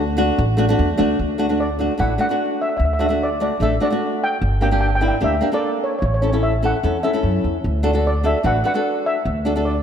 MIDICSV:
0, 0, Header, 1, 4, 480
1, 0, Start_track
1, 0, Key_signature, 2, "major"
1, 0, Tempo, 403497
1, 1407, Time_signature, 4, 2, 24, 8
1, 11690, End_track
2, 0, Start_track
2, 0, Title_t, "Steel pan"
2, 0, Program_c, 0, 114
2, 0, Note_on_c, 0, 83, 86
2, 0, Note_on_c, 0, 86, 111
2, 884, Note_off_c, 0, 86, 0
2, 888, Note_off_c, 0, 83, 0
2, 1907, Note_on_c, 0, 74, 83
2, 2379, Note_on_c, 0, 78, 85
2, 2390, Note_off_c, 0, 74, 0
2, 2613, Note_off_c, 0, 78, 0
2, 2627, Note_on_c, 0, 78, 89
2, 3110, Note_off_c, 0, 78, 0
2, 3111, Note_on_c, 0, 76, 81
2, 3190, Note_off_c, 0, 76, 0
2, 3204, Note_on_c, 0, 76, 60
2, 3281, Note_off_c, 0, 76, 0
2, 3293, Note_on_c, 0, 76, 69
2, 3368, Note_off_c, 0, 76, 0
2, 3390, Note_on_c, 0, 76, 60
2, 3468, Note_off_c, 0, 76, 0
2, 3491, Note_on_c, 0, 76, 70
2, 3554, Note_off_c, 0, 76, 0
2, 3568, Note_on_c, 0, 76, 60
2, 3631, Note_off_c, 0, 76, 0
2, 3645, Note_on_c, 0, 76, 68
2, 3726, Note_off_c, 0, 76, 0
2, 3847, Note_on_c, 0, 74, 88
2, 4057, Note_off_c, 0, 74, 0
2, 4072, Note_on_c, 0, 74, 79
2, 4305, Note_off_c, 0, 74, 0
2, 4310, Note_on_c, 0, 76, 89
2, 4544, Note_off_c, 0, 76, 0
2, 4556, Note_on_c, 0, 74, 85
2, 5034, Note_off_c, 0, 74, 0
2, 5039, Note_on_c, 0, 79, 94
2, 5484, Note_off_c, 0, 79, 0
2, 5498, Note_on_c, 0, 79, 86
2, 5579, Note_off_c, 0, 79, 0
2, 5624, Note_on_c, 0, 79, 64
2, 5684, Note_off_c, 0, 79, 0
2, 5718, Note_on_c, 0, 79, 84
2, 5774, Note_off_c, 0, 79, 0
2, 5805, Note_on_c, 0, 79, 72
2, 5867, Note_off_c, 0, 79, 0
2, 5892, Note_on_c, 0, 79, 89
2, 5949, Note_off_c, 0, 79, 0
2, 5965, Note_on_c, 0, 79, 71
2, 6032, Note_off_c, 0, 79, 0
2, 6046, Note_on_c, 0, 79, 79
2, 6118, Note_off_c, 0, 79, 0
2, 6237, Note_on_c, 0, 76, 86
2, 6593, Note_on_c, 0, 74, 83
2, 6598, Note_off_c, 0, 76, 0
2, 6911, Note_off_c, 0, 74, 0
2, 6944, Note_on_c, 0, 73, 78
2, 7014, Note_off_c, 0, 73, 0
2, 7029, Note_on_c, 0, 73, 54
2, 7108, Note_off_c, 0, 73, 0
2, 7122, Note_on_c, 0, 73, 71
2, 7192, Note_off_c, 0, 73, 0
2, 7207, Note_on_c, 0, 73, 59
2, 7291, Note_off_c, 0, 73, 0
2, 7306, Note_on_c, 0, 73, 67
2, 7382, Note_off_c, 0, 73, 0
2, 7395, Note_on_c, 0, 73, 58
2, 7474, Note_off_c, 0, 73, 0
2, 7491, Note_on_c, 0, 73, 65
2, 7569, Note_off_c, 0, 73, 0
2, 7648, Note_on_c, 0, 76, 89
2, 7755, Note_off_c, 0, 76, 0
2, 7917, Note_on_c, 0, 78, 88
2, 8366, Note_on_c, 0, 76, 73
2, 8395, Note_off_c, 0, 78, 0
2, 8812, Note_off_c, 0, 76, 0
2, 9601, Note_on_c, 0, 74, 89
2, 9825, Note_on_c, 0, 76, 84
2, 9831, Note_off_c, 0, 74, 0
2, 10063, Note_off_c, 0, 76, 0
2, 10068, Note_on_c, 0, 78, 90
2, 10172, Note_off_c, 0, 78, 0
2, 10307, Note_on_c, 0, 78, 97
2, 10746, Note_off_c, 0, 78, 0
2, 10781, Note_on_c, 0, 76, 90
2, 11450, Note_off_c, 0, 76, 0
2, 11483, Note_on_c, 0, 74, 82
2, 11690, Note_off_c, 0, 74, 0
2, 11690, End_track
3, 0, Start_track
3, 0, Title_t, "Nylon-string guitar"
3, 0, Program_c, 1, 24
3, 198, Note_on_c, 1, 57, 88
3, 209, Note_on_c, 1, 62, 83
3, 214, Note_on_c, 1, 66, 104
3, 495, Note_off_c, 1, 57, 0
3, 500, Note_off_c, 1, 62, 0
3, 502, Note_off_c, 1, 66, 0
3, 675, Note_on_c, 1, 57, 83
3, 687, Note_on_c, 1, 62, 80
3, 695, Note_on_c, 1, 66, 95
3, 759, Note_off_c, 1, 57, 0
3, 764, Note_off_c, 1, 62, 0
3, 768, Note_off_c, 1, 66, 0
3, 816, Note_on_c, 1, 57, 93
3, 822, Note_on_c, 1, 62, 80
3, 835, Note_on_c, 1, 66, 99
3, 1030, Note_off_c, 1, 57, 0
3, 1033, Note_off_c, 1, 62, 0
3, 1040, Note_off_c, 1, 66, 0
3, 1160, Note_on_c, 1, 57, 88
3, 1167, Note_on_c, 1, 62, 85
3, 1176, Note_on_c, 1, 66, 93
3, 1381, Note_off_c, 1, 57, 0
3, 1384, Note_off_c, 1, 62, 0
3, 1389, Note_off_c, 1, 66, 0
3, 1643, Note_on_c, 1, 57, 72
3, 1652, Note_on_c, 1, 62, 67
3, 1658, Note_on_c, 1, 66, 85
3, 1722, Note_off_c, 1, 57, 0
3, 1724, Note_off_c, 1, 62, 0
3, 1728, Note_off_c, 1, 66, 0
3, 1773, Note_on_c, 1, 57, 63
3, 1777, Note_on_c, 1, 62, 56
3, 1783, Note_on_c, 1, 66, 66
3, 1988, Note_off_c, 1, 57, 0
3, 1989, Note_off_c, 1, 62, 0
3, 1993, Note_off_c, 1, 66, 0
3, 2126, Note_on_c, 1, 57, 70
3, 2135, Note_on_c, 1, 62, 58
3, 2147, Note_on_c, 1, 66, 71
3, 2276, Note_off_c, 1, 57, 0
3, 2279, Note_off_c, 1, 62, 0
3, 2286, Note_off_c, 1, 66, 0
3, 2350, Note_on_c, 1, 57, 64
3, 2362, Note_on_c, 1, 62, 61
3, 2369, Note_on_c, 1, 64, 72
3, 2507, Note_off_c, 1, 57, 0
3, 2513, Note_off_c, 1, 62, 0
3, 2517, Note_off_c, 1, 64, 0
3, 2594, Note_on_c, 1, 57, 67
3, 2600, Note_on_c, 1, 62, 57
3, 2607, Note_on_c, 1, 66, 70
3, 2676, Note_off_c, 1, 57, 0
3, 2679, Note_off_c, 1, 62, 0
3, 2682, Note_off_c, 1, 66, 0
3, 2724, Note_on_c, 1, 57, 67
3, 2739, Note_on_c, 1, 62, 63
3, 2749, Note_on_c, 1, 66, 76
3, 3230, Note_off_c, 1, 57, 0
3, 3238, Note_off_c, 1, 62, 0
3, 3243, Note_off_c, 1, 66, 0
3, 3558, Note_on_c, 1, 57, 67
3, 3571, Note_on_c, 1, 62, 60
3, 3574, Note_on_c, 1, 66, 77
3, 3638, Note_off_c, 1, 57, 0
3, 3644, Note_off_c, 1, 66, 0
3, 3645, Note_off_c, 1, 62, 0
3, 3672, Note_on_c, 1, 57, 64
3, 3683, Note_on_c, 1, 62, 59
3, 3691, Note_on_c, 1, 66, 70
3, 3896, Note_off_c, 1, 57, 0
3, 3902, Note_off_c, 1, 62, 0
3, 3906, Note_off_c, 1, 66, 0
3, 4047, Note_on_c, 1, 57, 69
3, 4054, Note_on_c, 1, 62, 59
3, 4060, Note_on_c, 1, 66, 73
3, 4195, Note_off_c, 1, 57, 0
3, 4198, Note_off_c, 1, 62, 0
3, 4201, Note_off_c, 1, 66, 0
3, 4294, Note_on_c, 1, 57, 70
3, 4304, Note_on_c, 1, 62, 58
3, 4313, Note_on_c, 1, 69, 74
3, 4439, Note_off_c, 1, 57, 0
3, 4443, Note_off_c, 1, 62, 0
3, 4448, Note_off_c, 1, 69, 0
3, 4523, Note_on_c, 1, 57, 69
3, 4531, Note_on_c, 1, 62, 61
3, 4537, Note_on_c, 1, 66, 78
3, 4600, Note_off_c, 1, 57, 0
3, 4604, Note_off_c, 1, 62, 0
3, 4607, Note_off_c, 1, 66, 0
3, 4644, Note_on_c, 1, 57, 68
3, 4655, Note_on_c, 1, 62, 59
3, 4668, Note_on_c, 1, 66, 79
3, 5150, Note_off_c, 1, 57, 0
3, 5155, Note_off_c, 1, 62, 0
3, 5162, Note_off_c, 1, 66, 0
3, 5483, Note_on_c, 1, 58, 67
3, 5492, Note_on_c, 1, 62, 58
3, 5497, Note_on_c, 1, 67, 72
3, 5560, Note_off_c, 1, 58, 0
3, 5564, Note_off_c, 1, 62, 0
3, 5566, Note_off_c, 1, 67, 0
3, 5606, Note_on_c, 1, 58, 66
3, 5608, Note_on_c, 1, 62, 61
3, 5618, Note_on_c, 1, 67, 70
3, 5823, Note_off_c, 1, 58, 0
3, 5823, Note_off_c, 1, 62, 0
3, 5829, Note_off_c, 1, 67, 0
3, 5957, Note_on_c, 1, 58, 67
3, 5962, Note_on_c, 1, 62, 65
3, 5971, Note_on_c, 1, 64, 76
3, 6110, Note_off_c, 1, 58, 0
3, 6113, Note_off_c, 1, 62, 0
3, 6117, Note_off_c, 1, 64, 0
3, 6192, Note_on_c, 1, 58, 68
3, 6197, Note_on_c, 1, 62, 61
3, 6202, Note_on_c, 1, 67, 75
3, 6347, Note_off_c, 1, 58, 0
3, 6350, Note_off_c, 1, 62, 0
3, 6352, Note_off_c, 1, 67, 0
3, 6433, Note_on_c, 1, 58, 71
3, 6443, Note_on_c, 1, 62, 64
3, 6451, Note_on_c, 1, 67, 76
3, 6514, Note_off_c, 1, 58, 0
3, 6520, Note_off_c, 1, 62, 0
3, 6522, Note_off_c, 1, 67, 0
3, 6563, Note_on_c, 1, 58, 66
3, 6571, Note_on_c, 1, 62, 63
3, 6580, Note_on_c, 1, 69, 77
3, 7069, Note_off_c, 1, 58, 0
3, 7073, Note_off_c, 1, 62, 0
3, 7078, Note_off_c, 1, 69, 0
3, 7400, Note_on_c, 1, 61, 67
3, 7409, Note_on_c, 1, 64, 61
3, 7415, Note_on_c, 1, 69, 74
3, 7478, Note_off_c, 1, 61, 0
3, 7483, Note_off_c, 1, 64, 0
3, 7485, Note_off_c, 1, 69, 0
3, 7524, Note_on_c, 1, 61, 67
3, 7532, Note_on_c, 1, 64, 62
3, 7537, Note_on_c, 1, 69, 74
3, 7742, Note_off_c, 1, 61, 0
3, 7746, Note_off_c, 1, 64, 0
3, 7749, Note_off_c, 1, 69, 0
3, 7880, Note_on_c, 1, 61, 69
3, 7886, Note_on_c, 1, 64, 64
3, 7896, Note_on_c, 1, 69, 71
3, 8033, Note_off_c, 1, 61, 0
3, 8033, Note_off_c, 1, 64, 0
3, 8040, Note_off_c, 1, 69, 0
3, 8129, Note_on_c, 1, 61, 65
3, 8135, Note_on_c, 1, 64, 61
3, 8141, Note_on_c, 1, 69, 72
3, 8276, Note_off_c, 1, 61, 0
3, 8280, Note_off_c, 1, 64, 0
3, 8281, Note_off_c, 1, 69, 0
3, 8364, Note_on_c, 1, 61, 69
3, 8371, Note_on_c, 1, 64, 59
3, 8378, Note_on_c, 1, 69, 75
3, 8441, Note_off_c, 1, 61, 0
3, 8443, Note_off_c, 1, 64, 0
3, 8448, Note_off_c, 1, 69, 0
3, 8485, Note_on_c, 1, 61, 65
3, 8495, Note_on_c, 1, 64, 64
3, 8501, Note_on_c, 1, 69, 76
3, 8992, Note_off_c, 1, 61, 0
3, 8997, Note_off_c, 1, 64, 0
3, 8998, Note_off_c, 1, 69, 0
3, 9314, Note_on_c, 1, 62, 83
3, 9321, Note_on_c, 1, 66, 72
3, 9325, Note_on_c, 1, 69, 88
3, 9397, Note_off_c, 1, 62, 0
3, 9398, Note_off_c, 1, 66, 0
3, 9402, Note_off_c, 1, 69, 0
3, 9437, Note_on_c, 1, 62, 64
3, 9446, Note_on_c, 1, 66, 58
3, 9453, Note_on_c, 1, 69, 73
3, 9661, Note_off_c, 1, 62, 0
3, 9663, Note_off_c, 1, 66, 0
3, 9668, Note_off_c, 1, 69, 0
3, 9796, Note_on_c, 1, 62, 69
3, 9801, Note_on_c, 1, 66, 65
3, 9810, Note_on_c, 1, 69, 73
3, 9951, Note_off_c, 1, 62, 0
3, 9954, Note_off_c, 1, 66, 0
3, 9958, Note_off_c, 1, 69, 0
3, 10033, Note_on_c, 1, 62, 67
3, 10043, Note_on_c, 1, 66, 59
3, 10049, Note_on_c, 1, 71, 70
3, 10191, Note_off_c, 1, 62, 0
3, 10194, Note_off_c, 1, 66, 0
3, 10198, Note_off_c, 1, 71, 0
3, 10275, Note_on_c, 1, 62, 68
3, 10283, Note_on_c, 1, 66, 62
3, 10293, Note_on_c, 1, 71, 69
3, 10358, Note_off_c, 1, 62, 0
3, 10362, Note_off_c, 1, 66, 0
3, 10367, Note_off_c, 1, 71, 0
3, 10397, Note_on_c, 1, 62, 68
3, 10409, Note_on_c, 1, 66, 65
3, 10414, Note_on_c, 1, 69, 76
3, 10910, Note_off_c, 1, 62, 0
3, 10916, Note_off_c, 1, 66, 0
3, 10919, Note_off_c, 1, 69, 0
3, 11241, Note_on_c, 1, 62, 70
3, 11251, Note_on_c, 1, 66, 61
3, 11258, Note_on_c, 1, 69, 75
3, 11322, Note_off_c, 1, 62, 0
3, 11327, Note_off_c, 1, 66, 0
3, 11331, Note_off_c, 1, 69, 0
3, 11367, Note_on_c, 1, 62, 68
3, 11373, Note_on_c, 1, 66, 59
3, 11381, Note_on_c, 1, 69, 74
3, 11588, Note_off_c, 1, 62, 0
3, 11591, Note_off_c, 1, 66, 0
3, 11595, Note_off_c, 1, 69, 0
3, 11690, End_track
4, 0, Start_track
4, 0, Title_t, "Upright bass"
4, 0, Program_c, 2, 32
4, 0, Note_on_c, 2, 38, 91
4, 348, Note_off_c, 2, 38, 0
4, 458, Note_on_c, 2, 33, 102
4, 862, Note_off_c, 2, 33, 0
4, 939, Note_on_c, 2, 40, 88
4, 1150, Note_off_c, 2, 40, 0
4, 1178, Note_on_c, 2, 38, 85
4, 1389, Note_off_c, 2, 38, 0
4, 1419, Note_on_c, 2, 38, 81
4, 2230, Note_off_c, 2, 38, 0
4, 2372, Note_on_c, 2, 33, 89
4, 2573, Note_off_c, 2, 33, 0
4, 3325, Note_on_c, 2, 38, 81
4, 4142, Note_off_c, 2, 38, 0
4, 4283, Note_on_c, 2, 33, 84
4, 4488, Note_off_c, 2, 33, 0
4, 5253, Note_on_c, 2, 31, 87
4, 6066, Note_off_c, 2, 31, 0
4, 6206, Note_on_c, 2, 38, 88
4, 6409, Note_off_c, 2, 38, 0
4, 7162, Note_on_c, 2, 33, 87
4, 7981, Note_off_c, 2, 33, 0
4, 8131, Note_on_c, 2, 40, 86
4, 8333, Note_off_c, 2, 40, 0
4, 8603, Note_on_c, 2, 42, 77
4, 8820, Note_off_c, 2, 42, 0
4, 8852, Note_on_c, 2, 40, 72
4, 9065, Note_off_c, 2, 40, 0
4, 9092, Note_on_c, 2, 38, 85
4, 9908, Note_off_c, 2, 38, 0
4, 10043, Note_on_c, 2, 33, 87
4, 10249, Note_off_c, 2, 33, 0
4, 11009, Note_on_c, 2, 38, 85
4, 11690, Note_off_c, 2, 38, 0
4, 11690, End_track
0, 0, End_of_file